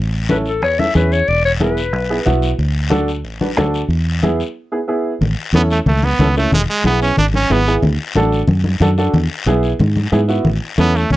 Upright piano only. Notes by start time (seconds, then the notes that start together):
0.29 C#4 E4 A4
0.79 C#4 E4 A4
0.95 C#4 E4 G#4
1.60 B3 E4 G#4
2.10 B3 E4 G#4
2.26 B3 E4 F#4
2.90 D4 F#4 A4
3.41 D4 F#4 B4
3.57 D4 F#4 A4
4.23 B3 E4 G#4
4.72 B3 E4 G#4
4.88 B3 E4 G#4
5.54 C#4 E4 A4
6.20 C#4 E4 A4
6.36 C#4 E4 A4
6.85 B3 E4 G#4
7.50 B3 E4 G#4
7.67 B3 E4 G#4
8.16 D4 F#4 A4
8.81 D4 F#4 A4
8.98 D4 F#4 A4
9.47 B3 E4 G#4
10.12 B3 E4 G#4
10.28 B3 E4 F#4
10.78 C#4 E4 A4